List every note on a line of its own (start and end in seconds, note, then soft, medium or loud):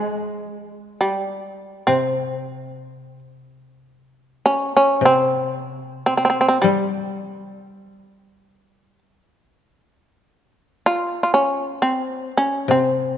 0.00 0.98 G#3 soft
0.00 2.66 G#3 soft
1.01 1.82 G3 soft
1.87 4.63 C3 soft
1.87 3.19 C4 medium
4.46 4.71 C#4 medium
4.77 5.02 C#4 medium
5.01 7.65 C3 soft
5.05 6.01 C4 medium
6.06 6.13 C4 medium
6.17 6.23 C4 soft
6.25 6.29 C4 medium
6.30 6.38 C4 soft
6.41 6.47 C4 medium
6.48 6.57 C4 soft
6.62 8.99 G3 medium
6.62 9.22 G3 soft
10.86 11.22 F4 medium
11.23 11.33 F4 soft
11.34 11.81 C#4 medium
11.82 12.30 C4 medium
12.37 12.70 C#4 medium
12.68 13.18 C3 soft
12.68 13.18 C4 soft